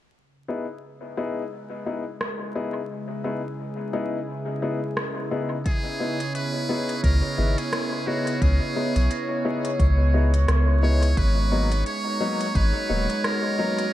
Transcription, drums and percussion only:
2.21 cross-stick medium
4.97 cross-stick medium
5.66 kick loud
5.66 closed hi-hat soft
6.20 closed hi-hat soft
6.35 closed hi-hat soft
6.89 closed hi-hat soft
7.04 kick loud
7.04 closed hi-hat soft
7.58 closed hi-hat soft
7.73 cross-stick medium
7.73 closed hi-hat soft
8.27 closed hi-hat medium
8.42 kick loud
8.42 closed hi-hat soft
8.96 closed hi-hat medium
9.11 closed hi-hat soft
9.65 closed hi-hat medium
9.79 kick loud
9.79 closed hi-hat soft
10.34 closed hi-hat medium
10.48 cross-stick medium
10.48 closed hi-hat soft
11.03 closed hi-hat medium
11.17 kick loud
11.17 closed hi-hat soft
11.72 closed hi-hat soft
11.86 closed hi-hat soft
12.41 closed hi-hat medium
12.55 kick loud
12.55 closed hi-hat soft
13.10 closed hi-hat medium
13.24 cross-stick medium
13.24 closed hi-hat soft
13.78 closed hi-hat medium

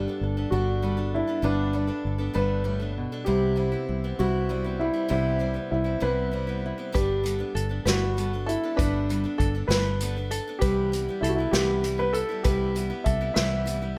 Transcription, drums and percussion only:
6.95 kick loud
6.95 closed hi-hat medium
7.26 closed hi-hat medium
7.56 closed hi-hat soft
7.87 snare medium
7.87 closed hi-hat medium
8.18 closed hi-hat soft
8.49 closed hi-hat medium
8.79 kick loud
8.79 closed hi-hat medium
9.10 closed hi-hat medium
9.40 kick medium
9.40 closed hi-hat medium
9.71 snare medium
9.71 closed hi-hat medium
10.00 closed hi-hat medium
10.31 closed hi-hat medium
10.62 kick medium
10.62 closed hi-hat medium
10.93 closed hi-hat medium
11.24 closed hi-hat medium
11.53 snare medium
11.53 closed hi-hat medium
11.84 closed hi-hat medium
12.14 closed hi-hat medium
12.44 kick loud
12.44 closed hi-hat medium
12.76 closed hi-hat medium
13.06 kick medium
13.06 closed hi-hat medium
13.36 snare medium
13.36 closed hi-hat medium
13.67 closed hi-hat medium

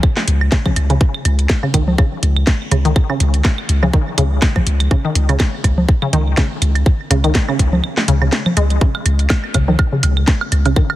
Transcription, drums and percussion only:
0.03 kick loud
0.03 claves medium
0.17 snare medium
0.28 closed hi-hat medium
0.41 claves soft
0.52 kick loud
0.52 snare medium
0.66 kick medium
0.66 low conga medium
0.66 claves medium
0.76 closed hi-hat medium
0.76 claves soft
0.90 closed hi-hat soft
1.01 kick loud
1.14 claves medium
1.25 closed hi-hat medium
1.25 claves soft
1.39 closed hi-hat soft
1.50 kick loud
1.50 snare medium
1.63 claves soft
1.74 kick medium
1.74 closed hi-hat medium
1.74 claves medium
1.88 low conga medium
1.98 kick loud
1.98 claves soft
2.23 closed hi-hat medium
2.37 claves medium
2.47 kick loud
2.47 snare medium
2.71 closed hi-hat medium
2.71 claves soft
2.85 closed hi-hat soft
2.96 kick loud
2.96 claves medium
3.10 claves soft
3.20 closed hi-hat medium
3.34 closed hi-hat soft
3.45 kick loud
3.45 snare medium
3.45 claves soft
3.58 claves medium
3.69 closed hi-hat medium
3.83 low conga medium
3.83 claves soft
3.93 kick loud
4.18 closed hi-hat medium
4.18 claves medium
4.42 kick loud
4.42 snare medium
4.56 kick medium
4.56 low conga medium
4.56 claves soft
4.67 closed hi-hat medium
4.80 closed hi-hat soft
4.80 claves medium
4.91 kick loud
4.91 claves soft
5.15 closed hi-hat medium
5.29 closed hi-hat soft
5.29 claves soft
5.40 kick loud
5.40 snare medium
5.40 claves medium
5.64 kick medium
5.64 closed hi-hat medium
5.64 claves soft
5.78 low conga medium
5.89 kick loud
6.02 claves medium
6.13 closed hi-hat medium
6.37 kick loud
6.37 snare medium
6.37 claves soft
6.62 closed hi-hat medium
6.62 claves medium
6.75 closed hi-hat soft
6.75 claves soft
6.86 kick loud
7.11 closed hi-hat medium
7.11 claves soft
7.24 closed hi-hat soft
7.24 claves medium
7.35 kick loud
7.35 snare medium
7.48 claves soft
7.59 kick medium
7.59 closed hi-hat medium
7.73 low conga medium
7.84 claves medium
7.97 snare medium
8.08 closed hi-hat medium
8.22 claves soft
8.32 snare medium
8.46 low conga medium
8.46 claves medium
8.57 closed hi-hat medium
8.57 claves soft
8.70 closed hi-hat soft
8.81 kick loud
8.95 claves medium
8.95 high woodblock soft
9.06 closed hi-hat medium
9.06 claves soft
9.19 closed hi-hat soft
9.30 kick loud
9.30 snare loud
9.30 high woodblock medium
9.44 claves soft
9.54 kick medium
9.54 closed hi-hat medium
9.54 claves medium
9.54 high woodblock soft
9.68 low conga loud
9.79 kick loud
9.79 claves soft
9.79 high woodblock medium
10.03 closed hi-hat loud
10.03 high woodblock soft
10.17 claves medium
10.27 kick loud
10.27 snare medium
10.41 high woodblock medium
10.52 closed hi-hat medium
10.52 claves soft
10.65 closed hi-hat soft
10.65 high woodblock soft
10.76 kick loud
10.76 claves medium
10.90 claves soft
10.90 high woodblock medium

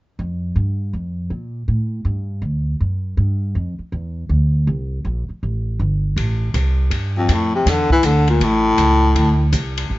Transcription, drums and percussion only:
6.17 kick soft
6.17 ride soft
6.54 kick soft
6.54 hi-hat pedal soft
6.54 ride soft
6.91 kick soft
6.91 ride soft
7.28 kick soft
7.28 hi-hat pedal soft
7.28 ride medium
7.66 kick soft
7.66 snare soft
7.66 ride medium
7.90 kick soft
8.03 kick soft
8.03 hi-hat pedal soft
8.03 ride medium
8.28 ride soft
8.40 kick soft
8.40 ride medium
8.78 kick soft
8.78 hi-hat pedal medium
8.78 ride medium
9.15 kick soft
9.15 ride medium
9.53 kick soft
9.53 hi-hat pedal soft
9.53 ride medium
9.78 ride medium
9.90 kick soft

